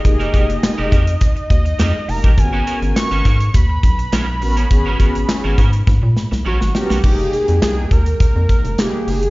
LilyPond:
<<
  \new Staff \with { instrumentName = "Analog synth lead" } { \time 4/4 \key aes \lydian \tempo 4 = 103 ees''2~ ees''8 ees''4 bes''8 | aes''4 des'''4 ces'''2~ | ces'''2. ges'8 g'8~ | g'8 aes'8 aes'8 bes'8 bes'4 g'8 aes'8 | }
  \new Staff \with { instrumentName = "Analog polysynth" } { \time 4/4 \key aes \lydian <bes ees' g' aes'>4. r2 <bes ees' g' bes'>8 | <ces' des' ges' bes'>4. r2 <ces' des' ges' bes'>8 | <ces' des' ges' aes'>4. r2 <ces' des' ges' bes'>8 | <bes ees' g' aes'>4. r4. <bes ees' g' aes'>8. r16 | }
  \new Staff \with { instrumentName = "Clean electric guitar" } { \time 4/4 \key aes \lydian r16 <aes ees' g' bes'>16 <aes ees' g' bes'>16 r8 <aes ees' g' bes'>16 <aes ees' g' bes'>16 r4 r16 <aes ees' g' bes'>16 r8 <aes ees' g' bes'>16 | r16 <ces' des' ges' bes'>16 <ces' des' ges' bes'>16 r8 <ces' des' ges' bes'>16 <ces' des' ges' bes'>16 r4 r16 <ces' des' ges' bes'>16 r8 <ces' des' ges' bes'>16 | r16 <ces' des' ges' bes'>16 <ces' des' ges' bes'>16 r8 <ces' des' ges' bes'>16 <ces' des' ges' bes'>16 r4 r16 <ces' des' ges' bes'>16 r8 <ces' des' ges' bes'>16 | r1 | }
  \new Staff \with { instrumentName = "String machine" } { \clef bass \time 4/4 \key aes \lydian r1 | r1 | r1 | <ees aes g''>1 | }
  \new Staff \with { instrumentName = "Analog synth bass" } { \clef bass \time 4/4 \key aes \lydian f,,8 f,,8 r16 f,,16 f,8 r8 ees,8 f,16 r16 f,,16 a,,16 | aes,,8 r16 aes,,16 r16 aes,,16 aes,8 ees,8 ces,8 ces,8 a,,8 | aes,,8 aes,,8 r16 aes,,16 aes,8 aes,16 bes,16 r16 c,16 bes,,16 aes,,16 r16 ces,16 | f,,8 r16 f,16 c,8 ees,8 f,16 f,16 r16 f,,16 r8 ges,,8 | }
  \new DrumStaff \with { instrumentName = "Drums" } \drummode { \time 4/4 <hh bd>16 hh16 <hh bd>16 hh16 <hc hh sn>8 <hh bd>16 hh16 <hh bd>16 hh16 <hh bd>16 hh16 <hc hh sn>8 hho16 <hh bd>16 | <hh bd>8 hh16 hh16 <hc hh sn>16 hh16 <hh bd>16 hh16 <hh bd>8 <hh bd>16 hh16 <hc hh sn>8 hho16 hh16 | <hh bd>8 <hh bd>16 hh16 <hc hh sn>8 <hh bd>16 hh16 <bd sn>8 sn16 sn16 r16 sn16 sn16 sn16 | <cymc bd>16 hh16 hh16 hh16 <hc hh sn>8 <hh bd>16 hh16 <hh bd>8 <hh bd>16 hh16 <hc hh sn>8 hho16 hh16 | }
>>